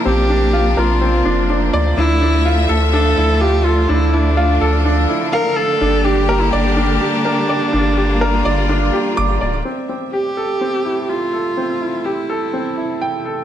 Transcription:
Already playing: C3 F3 A#3 C4 D4 F4 A#4
0.05 A#1 C4 G4
0.29 D4
0.53 F4
0.77 A#1 F4 A#4
1.01 C4
1.25 F1 D4
1.50 D4
1.73 D2 D5
1.97 D2 D3 A3 D4 E4 E5
2.21 D4
2.45 F4
2.69 D2 A4
2.93 D4 A4
3.17 D2 E4
3.41 F4 G4
3.65 F4 A4
3.89 D2 D4 E4
4.13 D4 E4
4.37 F4
4.61 D2 A4
4.85 D4
5.09 E4
5.33 A#4 F5
5.57 A4
5.81 G1 G3 A#3 D4 G4
6.05 D4 G4
6.29 A#4
6.41 E4
6.53 G1 D4 D5
6.77 D4
7.01 G4
7.25 A#4
7.49 D5
7.73 G1 D4 F4
7.97 G4
8.21 A#4
8.45 G1 D5
8.69 D4
8.93 G4
9.17 G1 D6
9.41 D1 D5
9.65 C3 G3 A3 C4 E5
9.89 C4
10.13 G4
10.37 A4
10.61 C4
10.85 E4
11.09 F4 G4
11.33 A4
11.57 C4
11.81 E4
12.05 E4 G4
12.30 A4
12.53 C4
12.77 E4
13.01 G5
13.25 A4

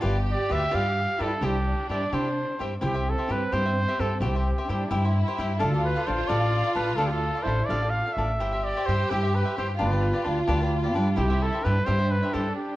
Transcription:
0.01 G1 F4 G4 B4 D5
0.31 D5
0.49 D2 F4 G4 B4 D5 E5
0.71 G2 F4 G4 B4 D5 F5
1.18 G2 E4 F4 G4 A4 B4 D5
1.39 C2 D4 E4 G4 C5 E5
1.45 G4
1.89 G2 E4 G4 C5 D5 E5
2.12 C3 E4 G4 C5 E5
2.58 G2 C4 E4 G4 C5 E5
2.81 C2 C4 E4 G4 C5 E5
2.85 G4
2.94 G4 C5 E5
3.10 A4
3.18 G4 C5 E5
3.28 G2 E4 G4 B4 C5 E5
3.52 G2 E4 G4 C5 E5
3.66 G4 C5 E5
3.88 G4 C5 E5
3.99 G2 E4 G4 A4 C5 E5
4.20 C2 E4 G4 C5 E5
4.35 G4 C5 E5
4.58 G4 C5 E5
4.67 G2 D4 E4 G4 C5 E5
4.88 G2 E4 G4 C5 E5
5.04 G4 C5 E5
5.27 G4 C5 E5
5.38 G2 E4 G4 C5 E5
5.59 D2 D4 F4 A4 D5 F5
5.73 A4 D5 F5
5.84 B4
5.95 A4 D5 F5
6.06 A1 D4 A4 C5 D5 F5
6.28 A1 D4 A4 D5 F5
6.41 A4 D5 F5
6.63 A4 D5 F5
6.75 A1 D4 A4 B4 D5 F5
6.96 D2 D4 A4 D5 F5
7.07 G4 D5 F5
7.11 A4
7.35 A4 D5 F5
7.43 A1 D4 E4 C5
7.48 A4 D5 F5
7.65 A1 F4 D5
7.70 D4 A4 D5 F5
7.82 A4 D5 F5
7.90 F5
8.06 A4 D5 F5
8.13 A1 E5
8.18 D4 A4 D5 F5
8.39 G1 E4 G4 C5 E5
8.53 G4 C5 E5
8.64 D5
8.77 G4 C5 E5
8.86 G2 E4 G4 C5 E5
9.10 G2 E4 G4 C5 E5
9.23 G4 C5 E5
9.35 B4
9.45 G4 C5 E5
9.57 G2 E4 G4 C5 E5
9.79 G1 D4 F4 G4 B4 D5
9.91 G4 B4 D5
10.14 G4 B4 D5
10.25 D2 D4 G4 B4 D5
10.48 D2 D4 G4 B4 D5
10.61 G4 B4 D5
10.83 G4 B4 D5
10.94 G2 D4 G4 B4 D5
11.16 C2 E4 G4 C5 E5
11.30 G4 C5 E5
11.42 A4
11.52 G4 C5 E5
11.64 G2 D4 E4 G4 B4 C5 E5
11.85 G2 E4 G4 C5 E5
11.98 G4 C5 E5
12.11 B4
12.22 G4 C5 E5
12.33 G2 E4 G4 A4 C5 E5
12.56 G4

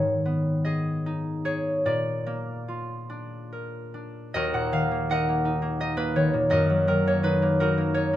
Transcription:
Already playing: G#2 D#3 D#4 C#5 D#5
0.26 B3
0.65 G#4 D#5
1.06 D#4
1.45 G#4 C#5
1.86 A#2 D5
2.26 A#3
2.68 F4
3.10 D4
3.53 A#4
3.94 D4
4.34 D#2 F#4 A#4 D#5
4.53 A#2 F#5
4.72 D#3 F5
4.91 A#3
5.10 D#4 A#4 D#5 F#5
5.29 A#3
5.45 D#4
5.62 A#3
5.80 D#4 D#5
5.97 A#3 B4
6.16 D#3 C#5
6.33 A#2
6.50 F#2 F#4 A#4 D#5
6.69 F#3
6.87 D#3 A#4
7.07 A#3 C#5
7.23 D#4 B4
7.42 A#3
7.60 D#4 F#4 A#4
7.78 A#3
7.94 D#4 C#5
8.13 A#3

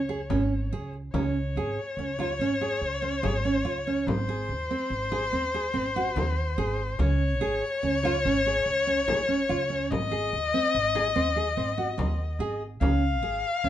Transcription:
Already playing: C#2 C#5
0.09 G#4
0.30 G#1 C#4, frame drum
0.73 C#2 G#4
0.94 frame drum
1.13 C#2 C#4 C#5, frame drum
1.56 G#1 G#4
1.97 C#2 C#4, frame drum
2.19 F4, frame drum
2.39 G#1 C#4
2.61 G#4
2.81 C#2
3.02 C#4
3.23 G#1 G#4, frame drum
3.45 C#4
3.65 C#2 F4
3.87 C#4, frame drum
4.07 G#1 C5, frame drum
4.29 G#4
4.49 D#2
4.71 C4
4.90 G#1, frame drum
5.12 G#4, frame drum
5.32 D#2 C4
5.54 G#4
5.74 G#1 C4
5.96 F#4
6.16 D#2 C4, frame drum
6.58 G#1 G#4
6.79 frame drum
6.99 C#2 C#4 C#5, frame drum
7.40 G#1 G#4
7.83 C#2 C#4, frame drum
8.03 F4, frame drum
8.25 G#1 C#4
8.46 G#4
8.66 C#2
8.87 C#4
9.08 G#1 G#4, frame drum
9.28 C#4
9.49 C#2 F4
9.70 C#4, frame drum
9.91 G#1 D#5, frame drum
10.11 G#4
10.33 D#2
10.54 C4
10.74 G#1, frame drum
10.95 G#4, frame drum
11.16 D#2 C4
11.36 G#4
11.57 G#1 C4
11.78 F#4
11.97 D#2 C4, frame drum
12.39 G#1 G#4
12.61 frame drum
12.80 C#2 C#4 F5, frame drum
13.22 G#1 G#4
13.64 C#2 C#4

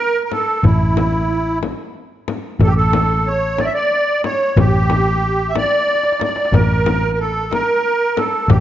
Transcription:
Already playing: A#4
0.24 A#4
0.32 A4, frame drum
0.63 A1 E4, frame drum, darbuka dum
0.97 darbuka tek, frame drum
1.30 darbuka ka
1.63 darbuka tek, frame drum
2.28 darbuka tek, frame drum
2.60 A1 A4, frame drum, darbuka dum
2.66 G4
2.77 A4
2.93 darbuka tek, frame drum
3.27 C#5, darbuka ka
3.58 D5, darbuka tek, frame drum
3.65 E5
3.74 D5
4.24 C#5, darbuka tek, frame drum
4.57 A1 G4, darbuka dum, frame drum
4.90 darbuka tek, frame drum
5.49 E5
5.55 D5, darbuka tek, frame drum
5.87 darbuka tek
5.95 darbuka ka
6.03 darbuka tek
6.12 darbuka ka
6.20 D5, darbuka tek, frame drum
6.29 darbuka ka
6.36 darbuka tek
6.45 darbuka ka
6.52 A1 A#4, darbuka dum, frame drum
6.86 darbuka tek, frame drum
7.13 A#4
7.19 A4, darbuka ka
7.51 A#4, darbuka tek, frame drum
8.16 A4, darbuka tek, frame drum
8.48 A1 G4, frame drum, darbuka dum

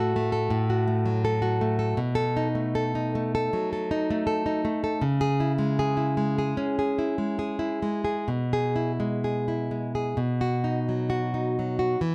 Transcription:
Already playing: A2 A3 F#4 A4
0.16 A3
0.32 A4
0.50 A2
0.70 F#4
0.88 A3
1.06 F#3
1.25 A4
1.42 F#4
1.61 A3
1.79 A4
1.97 B2
2.15 A4
2.37 D#4
2.55 A3
2.75 A4
2.95 D#4
3.15 A3
3.35 A4
3.53 F#3
3.73 A4
3.91 D#4
4.11 A3
4.27 A4
4.46 D#4
4.65 A3
4.84 A4
5.02 C#3
5.21 G#4
5.40 E4
5.58 G#3
5.79 G#4
5.97 E4
6.17 G#3
6.38 G#4
6.57 C#4
6.79 G#4
6.99 E4
7.18 G#3
7.39 G#4
7.59 E4
7.82 G#3
8.04 G#4
8.28 B2
8.53 G#4
8.76 E4
9.00 G#3
9.24 G#4
9.48 E4
9.71 G#3
9.95 G#4
10.17 B2
10.41 F#4
10.64 D#4
10.89 F#3
11.10 F#4
11.34 D#4
11.59 F#3
11.79 F#4
12.01 E3

